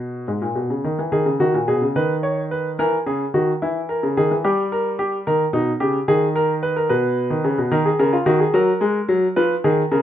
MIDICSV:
0, 0, Header, 1, 2, 480
1, 0, Start_track
1, 0, Key_signature, 5, "minor"
1, 0, Tempo, 556586
1, 969, Time_signature, 12, 3, 24, 8
1, 3357, Tempo, 546946
1, 8734, End_track
2, 0, Start_track
2, 0, Title_t, "Grand piano"
2, 0, Program_c, 0, 0
2, 0, Note_on_c, 0, 47, 61
2, 0, Note_on_c, 0, 68, 52
2, 217, Note_off_c, 0, 47, 0
2, 239, Note_on_c, 0, 44, 52
2, 357, Note_off_c, 0, 44, 0
2, 359, Note_on_c, 0, 46, 51
2, 476, Note_on_c, 0, 47, 48
2, 478, Note_off_c, 0, 46, 0
2, 597, Note_off_c, 0, 47, 0
2, 606, Note_on_c, 0, 49, 49
2, 693, Note_off_c, 0, 68, 0
2, 724, Note_off_c, 0, 49, 0
2, 728, Note_on_c, 0, 51, 56
2, 846, Note_off_c, 0, 51, 0
2, 851, Note_on_c, 0, 52, 53
2, 965, Note_on_c, 0, 51, 60
2, 967, Note_off_c, 0, 52, 0
2, 967, Note_on_c, 0, 68, 67
2, 1084, Note_off_c, 0, 51, 0
2, 1085, Note_on_c, 0, 49, 57
2, 1117, Note_off_c, 0, 68, 0
2, 1204, Note_off_c, 0, 49, 0
2, 1205, Note_on_c, 0, 51, 55
2, 1208, Note_on_c, 0, 66, 68
2, 1325, Note_off_c, 0, 51, 0
2, 1329, Note_on_c, 0, 46, 54
2, 1358, Note_off_c, 0, 66, 0
2, 1447, Note_off_c, 0, 46, 0
2, 1447, Note_on_c, 0, 47, 57
2, 1447, Note_on_c, 0, 68, 68
2, 1566, Note_off_c, 0, 47, 0
2, 1569, Note_on_c, 0, 49, 52
2, 1598, Note_off_c, 0, 68, 0
2, 1687, Note_off_c, 0, 49, 0
2, 1689, Note_on_c, 0, 51, 59
2, 1689, Note_on_c, 0, 71, 71
2, 1838, Note_off_c, 0, 71, 0
2, 1924, Note_on_c, 0, 73, 61
2, 2074, Note_off_c, 0, 73, 0
2, 2167, Note_on_c, 0, 71, 66
2, 2315, Note_off_c, 0, 71, 0
2, 2384, Note_off_c, 0, 51, 0
2, 2406, Note_on_c, 0, 52, 69
2, 2407, Note_on_c, 0, 70, 78
2, 2553, Note_off_c, 0, 52, 0
2, 2554, Note_off_c, 0, 70, 0
2, 2642, Note_on_c, 0, 49, 62
2, 2644, Note_on_c, 0, 68, 67
2, 2790, Note_off_c, 0, 49, 0
2, 2791, Note_off_c, 0, 68, 0
2, 2880, Note_on_c, 0, 51, 59
2, 2882, Note_on_c, 0, 66, 63
2, 3028, Note_off_c, 0, 51, 0
2, 3029, Note_off_c, 0, 66, 0
2, 3123, Note_on_c, 0, 52, 56
2, 3123, Note_on_c, 0, 64, 68
2, 3269, Note_off_c, 0, 64, 0
2, 3355, Note_on_c, 0, 70, 60
2, 3468, Note_off_c, 0, 52, 0
2, 3479, Note_on_c, 0, 49, 62
2, 3505, Note_off_c, 0, 70, 0
2, 3596, Note_off_c, 0, 49, 0
2, 3603, Note_on_c, 0, 51, 59
2, 3603, Note_on_c, 0, 68, 77
2, 3718, Note_off_c, 0, 51, 0
2, 3725, Note_on_c, 0, 52, 54
2, 3751, Note_off_c, 0, 68, 0
2, 3839, Note_off_c, 0, 52, 0
2, 3841, Note_on_c, 0, 67, 70
2, 3842, Note_on_c, 0, 55, 61
2, 3990, Note_off_c, 0, 67, 0
2, 4084, Note_on_c, 0, 70, 70
2, 4232, Note_off_c, 0, 70, 0
2, 4320, Note_on_c, 0, 67, 70
2, 4468, Note_off_c, 0, 67, 0
2, 4539, Note_off_c, 0, 55, 0
2, 4565, Note_on_c, 0, 70, 70
2, 4566, Note_on_c, 0, 51, 61
2, 4711, Note_off_c, 0, 70, 0
2, 4712, Note_off_c, 0, 51, 0
2, 4794, Note_on_c, 0, 47, 51
2, 4796, Note_on_c, 0, 63, 68
2, 4944, Note_off_c, 0, 47, 0
2, 4945, Note_off_c, 0, 63, 0
2, 5033, Note_on_c, 0, 67, 73
2, 5035, Note_on_c, 0, 49, 59
2, 5184, Note_off_c, 0, 67, 0
2, 5185, Note_off_c, 0, 49, 0
2, 5277, Note_on_c, 0, 51, 65
2, 5278, Note_on_c, 0, 68, 80
2, 5426, Note_off_c, 0, 68, 0
2, 5518, Note_on_c, 0, 70, 79
2, 5666, Note_off_c, 0, 70, 0
2, 5756, Note_on_c, 0, 71, 76
2, 5872, Note_off_c, 0, 71, 0
2, 5877, Note_on_c, 0, 70, 64
2, 5972, Note_off_c, 0, 51, 0
2, 5991, Note_on_c, 0, 71, 75
2, 5992, Note_off_c, 0, 70, 0
2, 5994, Note_on_c, 0, 47, 67
2, 6342, Note_off_c, 0, 47, 0
2, 6351, Note_on_c, 0, 51, 61
2, 6468, Note_off_c, 0, 51, 0
2, 6473, Note_on_c, 0, 49, 71
2, 6589, Note_off_c, 0, 49, 0
2, 6595, Note_on_c, 0, 47, 58
2, 6690, Note_off_c, 0, 71, 0
2, 6710, Note_off_c, 0, 47, 0
2, 6711, Note_on_c, 0, 70, 65
2, 6712, Note_on_c, 0, 51, 79
2, 6829, Note_off_c, 0, 70, 0
2, 6834, Note_on_c, 0, 68, 63
2, 6861, Note_off_c, 0, 51, 0
2, 6950, Note_off_c, 0, 68, 0
2, 6955, Note_on_c, 0, 70, 66
2, 6956, Note_on_c, 0, 49, 84
2, 7070, Note_off_c, 0, 70, 0
2, 7074, Note_on_c, 0, 65, 70
2, 7104, Note_off_c, 0, 49, 0
2, 7189, Note_off_c, 0, 65, 0
2, 7189, Note_on_c, 0, 66, 66
2, 7190, Note_on_c, 0, 51, 85
2, 7307, Note_off_c, 0, 66, 0
2, 7311, Note_on_c, 0, 68, 61
2, 7339, Note_off_c, 0, 51, 0
2, 7428, Note_off_c, 0, 68, 0
2, 7432, Note_on_c, 0, 54, 80
2, 7435, Note_on_c, 0, 70, 63
2, 7581, Note_off_c, 0, 54, 0
2, 7670, Note_on_c, 0, 56, 80
2, 7821, Note_off_c, 0, 56, 0
2, 7914, Note_on_c, 0, 54, 76
2, 8063, Note_off_c, 0, 54, 0
2, 8135, Note_off_c, 0, 70, 0
2, 8158, Note_on_c, 0, 71, 85
2, 8161, Note_on_c, 0, 53, 86
2, 8307, Note_off_c, 0, 71, 0
2, 8308, Note_off_c, 0, 53, 0
2, 8402, Note_on_c, 0, 68, 71
2, 8403, Note_on_c, 0, 51, 82
2, 8550, Note_off_c, 0, 68, 0
2, 8551, Note_off_c, 0, 51, 0
2, 8642, Note_on_c, 0, 70, 68
2, 8643, Note_on_c, 0, 49, 83
2, 8734, Note_off_c, 0, 49, 0
2, 8734, Note_off_c, 0, 70, 0
2, 8734, End_track
0, 0, End_of_file